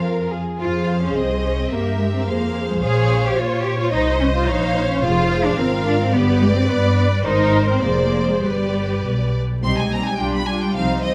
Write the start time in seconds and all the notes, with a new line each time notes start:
Already playing: F2 F4 F5
0.01 A#4
0.31 G#4
0.59 F2 F4 G#4 C5 F5
1.02 C#4
1.16 C2 C4 D#5
1.43 C#4
1.58 C4
1.71 G2 A#3 G4 A#4 E5
1.99 G#3
2.14 C4
2.27 F2 A#3 G#4 C5 F5
2.69 G#3
2.83 A#1 G#4 C#5 F5
3.25 G4
3.38 A#2 F4 C#5
3.64 G4
3.79 F4
3.92 C2 D#4 C5 D#5
4.19 C#4
4.34 F4
4.47 A#1 D#4 C#5 F5
4.90 C#4
5.02 F1 F4 G#4 C5 F5
5.44 D4
5.57 G#1 C4 F4 A#4
5.85 D4
6.00 C4
6.12 G1 B3 G4 B4 D5
6.40 G#3
6.55 C4
6.68 G2 B3 B4 D5
7.11 G3
7.24 G#1 D#4 A#4 C5
7.69 C4
7.81 F1 A#3 G#4 C5 D5
8.28 G#3
8.42 G1 G3 G4 B4 D5
9.04 B1
9.63 C2 G3 C4 D#4 G4 C6
9.77 G#3 G#5
9.92 G3 A#3 C4 D#4 G4 A#5
10.05 G#3 G#5
10.19 B1 G3 D4 F4 G4 G5
10.34 B3 B5
10.48 G3 G#3 D4 F4 G4 G#5
10.63 G3 G5
10.76 C2 F3 G3 C4 D#4 C5 F5
11.04 D#3 G3 C4 D#4 C5 D#5